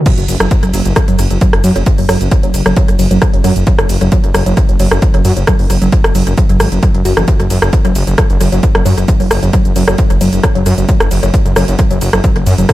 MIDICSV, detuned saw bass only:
0, 0, Header, 1, 2, 480
1, 0, Start_track
1, 0, Tempo, 451128
1, 63, Time_signature, 4, 2, 24, 8
1, 13545, End_track
2, 0, Start_track
2, 0, Title_t, "Detuned saw bass"
2, 0, Program_c, 0, 39
2, 190, Note_on_c, 0, 30, 93
2, 262, Note_off_c, 0, 30, 0
2, 304, Note_on_c, 0, 30, 103
2, 383, Note_off_c, 0, 30, 0
2, 430, Note_on_c, 0, 30, 93
2, 502, Note_off_c, 0, 30, 0
2, 670, Note_on_c, 0, 30, 81
2, 742, Note_off_c, 0, 30, 0
2, 784, Note_on_c, 0, 30, 100
2, 864, Note_off_c, 0, 30, 0
2, 909, Note_on_c, 0, 30, 91
2, 982, Note_off_c, 0, 30, 0
2, 1150, Note_on_c, 0, 30, 85
2, 1222, Note_off_c, 0, 30, 0
2, 1264, Note_on_c, 0, 30, 100
2, 1343, Note_off_c, 0, 30, 0
2, 1390, Note_on_c, 0, 30, 88
2, 1462, Note_off_c, 0, 30, 0
2, 1630, Note_on_c, 0, 30, 88
2, 1702, Note_off_c, 0, 30, 0
2, 1744, Note_on_c, 0, 42, 106
2, 1824, Note_off_c, 0, 42, 0
2, 1870, Note_on_c, 0, 30, 90
2, 1942, Note_off_c, 0, 30, 0
2, 2110, Note_on_c, 0, 30, 89
2, 2182, Note_off_c, 0, 30, 0
2, 2225, Note_on_c, 0, 30, 104
2, 2304, Note_off_c, 0, 30, 0
2, 2350, Note_on_c, 0, 30, 94
2, 2422, Note_off_c, 0, 30, 0
2, 2591, Note_on_c, 0, 30, 88
2, 2662, Note_off_c, 0, 30, 0
2, 2705, Note_on_c, 0, 30, 103
2, 2784, Note_off_c, 0, 30, 0
2, 2832, Note_on_c, 0, 30, 88
2, 2903, Note_off_c, 0, 30, 0
2, 3071, Note_on_c, 0, 30, 84
2, 3142, Note_off_c, 0, 30, 0
2, 3185, Note_on_c, 0, 30, 105
2, 3264, Note_off_c, 0, 30, 0
2, 3309, Note_on_c, 0, 30, 91
2, 3382, Note_off_c, 0, 30, 0
2, 3549, Note_on_c, 0, 30, 91
2, 3622, Note_off_c, 0, 30, 0
2, 3664, Note_on_c, 0, 42, 106
2, 3744, Note_off_c, 0, 42, 0
2, 3789, Note_on_c, 0, 30, 93
2, 3862, Note_off_c, 0, 30, 0
2, 4030, Note_on_c, 0, 30, 86
2, 4102, Note_off_c, 0, 30, 0
2, 4144, Note_on_c, 0, 30, 102
2, 4224, Note_off_c, 0, 30, 0
2, 4271, Note_on_c, 0, 30, 91
2, 4343, Note_off_c, 0, 30, 0
2, 4510, Note_on_c, 0, 30, 88
2, 4582, Note_off_c, 0, 30, 0
2, 4624, Note_on_c, 0, 30, 101
2, 4704, Note_off_c, 0, 30, 0
2, 4750, Note_on_c, 0, 30, 92
2, 4822, Note_off_c, 0, 30, 0
2, 4989, Note_on_c, 0, 30, 86
2, 5062, Note_off_c, 0, 30, 0
2, 5103, Note_on_c, 0, 30, 104
2, 5183, Note_off_c, 0, 30, 0
2, 5229, Note_on_c, 0, 30, 93
2, 5302, Note_off_c, 0, 30, 0
2, 5469, Note_on_c, 0, 30, 89
2, 5542, Note_off_c, 0, 30, 0
2, 5583, Note_on_c, 0, 42, 103
2, 5663, Note_off_c, 0, 42, 0
2, 5708, Note_on_c, 0, 30, 92
2, 5781, Note_off_c, 0, 30, 0
2, 5949, Note_on_c, 0, 30, 90
2, 6021, Note_off_c, 0, 30, 0
2, 6063, Note_on_c, 0, 30, 100
2, 6143, Note_off_c, 0, 30, 0
2, 6189, Note_on_c, 0, 30, 94
2, 6261, Note_off_c, 0, 30, 0
2, 6429, Note_on_c, 0, 30, 85
2, 6501, Note_off_c, 0, 30, 0
2, 6543, Note_on_c, 0, 30, 100
2, 6623, Note_off_c, 0, 30, 0
2, 6669, Note_on_c, 0, 30, 92
2, 6742, Note_off_c, 0, 30, 0
2, 6909, Note_on_c, 0, 30, 83
2, 6981, Note_off_c, 0, 30, 0
2, 7023, Note_on_c, 0, 32, 98
2, 7103, Note_off_c, 0, 32, 0
2, 7149, Note_on_c, 0, 30, 89
2, 7222, Note_off_c, 0, 30, 0
2, 7389, Note_on_c, 0, 30, 88
2, 7462, Note_off_c, 0, 30, 0
2, 7503, Note_on_c, 0, 30, 102
2, 7583, Note_off_c, 0, 30, 0
2, 7628, Note_on_c, 0, 30, 93
2, 7701, Note_off_c, 0, 30, 0
2, 7868, Note_on_c, 0, 30, 92
2, 7941, Note_off_c, 0, 30, 0
2, 7984, Note_on_c, 0, 30, 104
2, 8063, Note_off_c, 0, 30, 0
2, 8109, Note_on_c, 0, 30, 92
2, 8182, Note_off_c, 0, 30, 0
2, 8350, Note_on_c, 0, 30, 81
2, 8422, Note_off_c, 0, 30, 0
2, 8463, Note_on_c, 0, 30, 96
2, 8543, Note_off_c, 0, 30, 0
2, 8589, Note_on_c, 0, 30, 93
2, 8662, Note_off_c, 0, 30, 0
2, 8830, Note_on_c, 0, 30, 86
2, 8902, Note_off_c, 0, 30, 0
2, 8944, Note_on_c, 0, 30, 101
2, 9024, Note_off_c, 0, 30, 0
2, 9070, Note_on_c, 0, 30, 91
2, 9142, Note_off_c, 0, 30, 0
2, 9309, Note_on_c, 0, 30, 84
2, 9382, Note_off_c, 0, 30, 0
2, 9423, Note_on_c, 0, 42, 105
2, 9503, Note_off_c, 0, 42, 0
2, 9548, Note_on_c, 0, 30, 97
2, 9621, Note_off_c, 0, 30, 0
2, 9789, Note_on_c, 0, 30, 88
2, 9862, Note_off_c, 0, 30, 0
2, 9903, Note_on_c, 0, 30, 102
2, 9983, Note_off_c, 0, 30, 0
2, 10029, Note_on_c, 0, 30, 94
2, 10102, Note_off_c, 0, 30, 0
2, 10269, Note_on_c, 0, 30, 85
2, 10342, Note_off_c, 0, 30, 0
2, 10382, Note_on_c, 0, 30, 104
2, 10463, Note_off_c, 0, 30, 0
2, 10508, Note_on_c, 0, 30, 88
2, 10581, Note_off_c, 0, 30, 0
2, 10748, Note_on_c, 0, 30, 84
2, 10821, Note_off_c, 0, 30, 0
2, 10863, Note_on_c, 0, 30, 101
2, 10943, Note_off_c, 0, 30, 0
2, 10989, Note_on_c, 0, 30, 91
2, 11062, Note_off_c, 0, 30, 0
2, 11229, Note_on_c, 0, 30, 86
2, 11302, Note_off_c, 0, 30, 0
2, 11343, Note_on_c, 0, 42, 103
2, 11423, Note_off_c, 0, 42, 0
2, 11469, Note_on_c, 0, 30, 93
2, 11542, Note_off_c, 0, 30, 0
2, 11709, Note_on_c, 0, 30, 92
2, 11781, Note_off_c, 0, 30, 0
2, 11824, Note_on_c, 0, 30, 102
2, 11903, Note_off_c, 0, 30, 0
2, 11951, Note_on_c, 0, 30, 95
2, 12022, Note_off_c, 0, 30, 0
2, 12189, Note_on_c, 0, 30, 86
2, 12261, Note_off_c, 0, 30, 0
2, 12303, Note_on_c, 0, 30, 104
2, 12383, Note_off_c, 0, 30, 0
2, 12429, Note_on_c, 0, 30, 93
2, 12502, Note_off_c, 0, 30, 0
2, 12670, Note_on_c, 0, 30, 82
2, 12742, Note_off_c, 0, 30, 0
2, 12784, Note_on_c, 0, 30, 100
2, 12863, Note_off_c, 0, 30, 0
2, 12910, Note_on_c, 0, 30, 93
2, 12982, Note_off_c, 0, 30, 0
2, 13149, Note_on_c, 0, 30, 86
2, 13222, Note_off_c, 0, 30, 0
2, 13262, Note_on_c, 0, 42, 100
2, 13343, Note_off_c, 0, 42, 0
2, 13389, Note_on_c, 0, 30, 93
2, 13461, Note_off_c, 0, 30, 0
2, 13545, End_track
0, 0, End_of_file